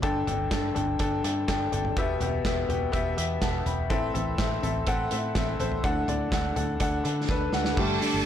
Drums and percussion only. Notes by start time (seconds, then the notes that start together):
0.03 kick, closed hi-hat
0.27 closed hi-hat, floor tom
0.51 kick, snare, clap, closed hi-hat
0.76 closed hi-hat, floor tom
0.99 kick, closed hi-hat
1.24 closed hi-hat
1.48 kick, snare, clap, closed hi-hat
1.72 closed hi-hat, floor tom
1.85 floor tom
1.97 kick, closed hi-hat
2.21 closed hi-hat, floor tom
2.45 kick, snare, clap, closed hi-hat
2.70 closed hi-hat, floor tom
2.93 kick, closed hi-hat
3.18 closed hi-hat
3.42 kick, snare, clap, closed hi-hat
3.66 closed hi-hat, floor tom
3.90 kick, closed hi-hat
4.15 closed hi-hat, floor tom
4.38 kick, snare, clap, closed hi-hat
4.63 closed hi-hat, floor tom
4.87 kick, closed hi-hat
5.11 closed hi-hat
5.35 kick, snare, clap, closed hi-hat
5.60 closed hi-hat, floor tom
5.72 floor tom
5.84 kick, closed hi-hat
6.08 closed hi-hat, floor tom
6.32 kick, snare, clap, closed hi-hat
6.56 closed hi-hat, floor tom
6.80 kick, closed hi-hat
7.05 closed hi-hat
7.29 kick, snare
7.53 snare
7.65 snare
7.77 kick, crash
8.02 hi-hat pedal, open hi-hat